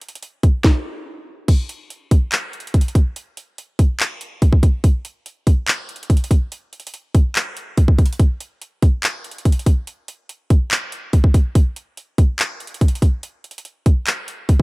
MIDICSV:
0, 0, Header, 1, 2, 480
1, 0, Start_track
1, 0, Tempo, 419580
1, 1695, Time_signature, 4, 2, 24, 8
1, 16726, End_track
2, 0, Start_track
2, 0, Title_t, "Drums"
2, 17, Note_on_c, 9, 42, 47
2, 97, Note_off_c, 9, 42, 0
2, 97, Note_on_c, 9, 42, 64
2, 176, Note_off_c, 9, 42, 0
2, 176, Note_on_c, 9, 42, 81
2, 257, Note_off_c, 9, 42, 0
2, 257, Note_on_c, 9, 42, 69
2, 372, Note_off_c, 9, 42, 0
2, 495, Note_on_c, 9, 42, 67
2, 496, Note_on_c, 9, 36, 101
2, 610, Note_off_c, 9, 42, 0
2, 611, Note_off_c, 9, 36, 0
2, 736, Note_on_c, 9, 36, 110
2, 737, Note_on_c, 9, 38, 94
2, 851, Note_off_c, 9, 36, 0
2, 851, Note_off_c, 9, 38, 0
2, 1696, Note_on_c, 9, 42, 76
2, 1697, Note_on_c, 9, 36, 105
2, 1697, Note_on_c, 9, 49, 106
2, 1811, Note_off_c, 9, 36, 0
2, 1811, Note_off_c, 9, 42, 0
2, 1811, Note_off_c, 9, 49, 0
2, 1936, Note_on_c, 9, 42, 77
2, 2050, Note_off_c, 9, 42, 0
2, 2178, Note_on_c, 9, 42, 71
2, 2292, Note_off_c, 9, 42, 0
2, 2417, Note_on_c, 9, 36, 109
2, 2417, Note_on_c, 9, 42, 72
2, 2531, Note_off_c, 9, 36, 0
2, 2531, Note_off_c, 9, 42, 0
2, 2657, Note_on_c, 9, 39, 109
2, 2657, Note_on_c, 9, 42, 65
2, 2771, Note_off_c, 9, 39, 0
2, 2771, Note_off_c, 9, 42, 0
2, 2897, Note_on_c, 9, 42, 44
2, 2976, Note_off_c, 9, 42, 0
2, 2976, Note_on_c, 9, 42, 51
2, 3057, Note_off_c, 9, 42, 0
2, 3057, Note_on_c, 9, 42, 56
2, 3135, Note_off_c, 9, 42, 0
2, 3135, Note_on_c, 9, 42, 61
2, 3136, Note_on_c, 9, 36, 95
2, 3216, Note_off_c, 9, 42, 0
2, 3216, Note_on_c, 9, 42, 69
2, 3250, Note_off_c, 9, 36, 0
2, 3297, Note_off_c, 9, 42, 0
2, 3297, Note_on_c, 9, 42, 72
2, 3376, Note_on_c, 9, 36, 100
2, 3378, Note_off_c, 9, 42, 0
2, 3378, Note_on_c, 9, 42, 79
2, 3491, Note_off_c, 9, 36, 0
2, 3492, Note_off_c, 9, 42, 0
2, 3617, Note_on_c, 9, 42, 78
2, 3731, Note_off_c, 9, 42, 0
2, 3857, Note_on_c, 9, 42, 80
2, 3972, Note_off_c, 9, 42, 0
2, 4098, Note_on_c, 9, 42, 68
2, 4212, Note_off_c, 9, 42, 0
2, 4336, Note_on_c, 9, 36, 104
2, 4336, Note_on_c, 9, 42, 73
2, 4451, Note_off_c, 9, 36, 0
2, 4451, Note_off_c, 9, 42, 0
2, 4576, Note_on_c, 9, 39, 114
2, 4576, Note_on_c, 9, 42, 66
2, 4690, Note_off_c, 9, 42, 0
2, 4691, Note_off_c, 9, 39, 0
2, 4816, Note_on_c, 9, 42, 78
2, 4930, Note_off_c, 9, 42, 0
2, 5055, Note_on_c, 9, 42, 67
2, 5056, Note_on_c, 9, 36, 99
2, 5170, Note_off_c, 9, 36, 0
2, 5170, Note_off_c, 9, 42, 0
2, 5177, Note_on_c, 9, 36, 97
2, 5291, Note_off_c, 9, 36, 0
2, 5296, Note_on_c, 9, 36, 98
2, 5297, Note_on_c, 9, 42, 73
2, 5410, Note_off_c, 9, 36, 0
2, 5411, Note_off_c, 9, 42, 0
2, 5535, Note_on_c, 9, 42, 77
2, 5536, Note_on_c, 9, 36, 106
2, 5650, Note_off_c, 9, 36, 0
2, 5650, Note_off_c, 9, 42, 0
2, 5775, Note_on_c, 9, 42, 77
2, 5889, Note_off_c, 9, 42, 0
2, 6017, Note_on_c, 9, 42, 73
2, 6131, Note_off_c, 9, 42, 0
2, 6256, Note_on_c, 9, 36, 104
2, 6256, Note_on_c, 9, 42, 70
2, 6370, Note_off_c, 9, 36, 0
2, 6370, Note_off_c, 9, 42, 0
2, 6496, Note_on_c, 9, 42, 66
2, 6497, Note_on_c, 9, 39, 110
2, 6611, Note_off_c, 9, 39, 0
2, 6611, Note_off_c, 9, 42, 0
2, 6737, Note_on_c, 9, 42, 45
2, 6817, Note_off_c, 9, 42, 0
2, 6817, Note_on_c, 9, 42, 51
2, 6897, Note_off_c, 9, 42, 0
2, 6897, Note_on_c, 9, 42, 55
2, 6976, Note_on_c, 9, 36, 96
2, 6977, Note_off_c, 9, 42, 0
2, 6977, Note_on_c, 9, 42, 62
2, 7057, Note_off_c, 9, 42, 0
2, 7057, Note_on_c, 9, 42, 69
2, 7090, Note_off_c, 9, 36, 0
2, 7137, Note_off_c, 9, 42, 0
2, 7137, Note_on_c, 9, 42, 73
2, 7216, Note_on_c, 9, 36, 95
2, 7218, Note_off_c, 9, 42, 0
2, 7218, Note_on_c, 9, 42, 80
2, 7330, Note_off_c, 9, 36, 0
2, 7332, Note_off_c, 9, 42, 0
2, 7457, Note_on_c, 9, 42, 77
2, 7571, Note_off_c, 9, 42, 0
2, 7696, Note_on_c, 9, 42, 47
2, 7776, Note_off_c, 9, 42, 0
2, 7776, Note_on_c, 9, 42, 64
2, 7856, Note_off_c, 9, 42, 0
2, 7856, Note_on_c, 9, 42, 85
2, 7936, Note_off_c, 9, 42, 0
2, 7936, Note_on_c, 9, 42, 72
2, 8050, Note_off_c, 9, 42, 0
2, 8174, Note_on_c, 9, 42, 69
2, 8175, Note_on_c, 9, 36, 110
2, 8289, Note_off_c, 9, 36, 0
2, 8289, Note_off_c, 9, 42, 0
2, 8415, Note_on_c, 9, 39, 111
2, 8415, Note_on_c, 9, 42, 66
2, 8529, Note_off_c, 9, 42, 0
2, 8530, Note_off_c, 9, 39, 0
2, 8656, Note_on_c, 9, 42, 77
2, 8770, Note_off_c, 9, 42, 0
2, 8894, Note_on_c, 9, 42, 66
2, 8895, Note_on_c, 9, 36, 94
2, 9008, Note_off_c, 9, 42, 0
2, 9009, Note_off_c, 9, 36, 0
2, 9016, Note_on_c, 9, 36, 98
2, 9131, Note_off_c, 9, 36, 0
2, 9135, Note_on_c, 9, 36, 95
2, 9135, Note_on_c, 9, 42, 45
2, 9216, Note_off_c, 9, 42, 0
2, 9216, Note_on_c, 9, 42, 64
2, 9249, Note_off_c, 9, 36, 0
2, 9296, Note_off_c, 9, 42, 0
2, 9296, Note_on_c, 9, 42, 78
2, 9375, Note_off_c, 9, 42, 0
2, 9375, Note_on_c, 9, 36, 102
2, 9375, Note_on_c, 9, 42, 77
2, 9489, Note_off_c, 9, 42, 0
2, 9490, Note_off_c, 9, 36, 0
2, 9615, Note_on_c, 9, 42, 77
2, 9729, Note_off_c, 9, 42, 0
2, 9856, Note_on_c, 9, 42, 70
2, 9970, Note_off_c, 9, 42, 0
2, 10095, Note_on_c, 9, 42, 70
2, 10096, Note_on_c, 9, 36, 108
2, 10210, Note_off_c, 9, 36, 0
2, 10210, Note_off_c, 9, 42, 0
2, 10335, Note_on_c, 9, 42, 68
2, 10336, Note_on_c, 9, 39, 111
2, 10450, Note_off_c, 9, 39, 0
2, 10450, Note_off_c, 9, 42, 0
2, 10575, Note_on_c, 9, 42, 44
2, 10655, Note_off_c, 9, 42, 0
2, 10655, Note_on_c, 9, 42, 51
2, 10735, Note_off_c, 9, 42, 0
2, 10735, Note_on_c, 9, 42, 56
2, 10815, Note_off_c, 9, 42, 0
2, 10815, Note_on_c, 9, 36, 96
2, 10815, Note_on_c, 9, 42, 62
2, 10895, Note_off_c, 9, 42, 0
2, 10895, Note_on_c, 9, 42, 66
2, 10930, Note_off_c, 9, 36, 0
2, 10975, Note_off_c, 9, 42, 0
2, 10975, Note_on_c, 9, 42, 74
2, 11055, Note_on_c, 9, 36, 96
2, 11056, Note_off_c, 9, 42, 0
2, 11056, Note_on_c, 9, 42, 82
2, 11170, Note_off_c, 9, 36, 0
2, 11170, Note_off_c, 9, 42, 0
2, 11294, Note_on_c, 9, 42, 77
2, 11409, Note_off_c, 9, 42, 0
2, 11534, Note_on_c, 9, 42, 76
2, 11648, Note_off_c, 9, 42, 0
2, 11775, Note_on_c, 9, 42, 74
2, 11889, Note_off_c, 9, 42, 0
2, 12016, Note_on_c, 9, 36, 110
2, 12016, Note_on_c, 9, 42, 69
2, 12130, Note_off_c, 9, 36, 0
2, 12130, Note_off_c, 9, 42, 0
2, 12256, Note_on_c, 9, 39, 116
2, 12256, Note_on_c, 9, 42, 68
2, 12370, Note_off_c, 9, 39, 0
2, 12370, Note_off_c, 9, 42, 0
2, 12495, Note_on_c, 9, 42, 79
2, 12610, Note_off_c, 9, 42, 0
2, 12734, Note_on_c, 9, 42, 66
2, 12736, Note_on_c, 9, 36, 97
2, 12849, Note_off_c, 9, 42, 0
2, 12850, Note_off_c, 9, 36, 0
2, 12857, Note_on_c, 9, 36, 97
2, 12972, Note_off_c, 9, 36, 0
2, 12976, Note_on_c, 9, 36, 96
2, 12977, Note_on_c, 9, 42, 75
2, 13090, Note_off_c, 9, 36, 0
2, 13091, Note_off_c, 9, 42, 0
2, 13217, Note_on_c, 9, 36, 106
2, 13217, Note_on_c, 9, 42, 76
2, 13331, Note_off_c, 9, 36, 0
2, 13331, Note_off_c, 9, 42, 0
2, 13457, Note_on_c, 9, 42, 78
2, 13571, Note_off_c, 9, 42, 0
2, 13698, Note_on_c, 9, 42, 70
2, 13812, Note_off_c, 9, 42, 0
2, 13936, Note_on_c, 9, 42, 70
2, 13937, Note_on_c, 9, 36, 106
2, 14051, Note_off_c, 9, 36, 0
2, 14051, Note_off_c, 9, 42, 0
2, 14178, Note_on_c, 9, 39, 113
2, 14178, Note_on_c, 9, 42, 68
2, 14292, Note_off_c, 9, 39, 0
2, 14292, Note_off_c, 9, 42, 0
2, 14418, Note_on_c, 9, 42, 46
2, 14498, Note_off_c, 9, 42, 0
2, 14498, Note_on_c, 9, 42, 50
2, 14578, Note_off_c, 9, 42, 0
2, 14578, Note_on_c, 9, 42, 56
2, 14657, Note_on_c, 9, 36, 97
2, 14658, Note_off_c, 9, 42, 0
2, 14658, Note_on_c, 9, 42, 60
2, 14738, Note_off_c, 9, 42, 0
2, 14738, Note_on_c, 9, 42, 67
2, 14771, Note_off_c, 9, 36, 0
2, 14818, Note_off_c, 9, 42, 0
2, 14818, Note_on_c, 9, 42, 73
2, 14896, Note_on_c, 9, 36, 94
2, 14898, Note_off_c, 9, 42, 0
2, 14898, Note_on_c, 9, 42, 79
2, 15011, Note_off_c, 9, 36, 0
2, 15013, Note_off_c, 9, 42, 0
2, 15137, Note_on_c, 9, 42, 78
2, 15251, Note_off_c, 9, 42, 0
2, 15377, Note_on_c, 9, 42, 49
2, 15456, Note_off_c, 9, 42, 0
2, 15456, Note_on_c, 9, 42, 64
2, 15536, Note_off_c, 9, 42, 0
2, 15536, Note_on_c, 9, 42, 80
2, 15616, Note_off_c, 9, 42, 0
2, 15616, Note_on_c, 9, 42, 70
2, 15730, Note_off_c, 9, 42, 0
2, 15855, Note_on_c, 9, 42, 72
2, 15856, Note_on_c, 9, 36, 107
2, 15970, Note_off_c, 9, 36, 0
2, 15970, Note_off_c, 9, 42, 0
2, 16095, Note_on_c, 9, 42, 64
2, 16096, Note_on_c, 9, 39, 110
2, 16210, Note_off_c, 9, 39, 0
2, 16210, Note_off_c, 9, 42, 0
2, 16336, Note_on_c, 9, 42, 79
2, 16450, Note_off_c, 9, 42, 0
2, 16575, Note_on_c, 9, 42, 65
2, 16576, Note_on_c, 9, 36, 96
2, 16689, Note_off_c, 9, 42, 0
2, 16690, Note_off_c, 9, 36, 0
2, 16726, End_track
0, 0, End_of_file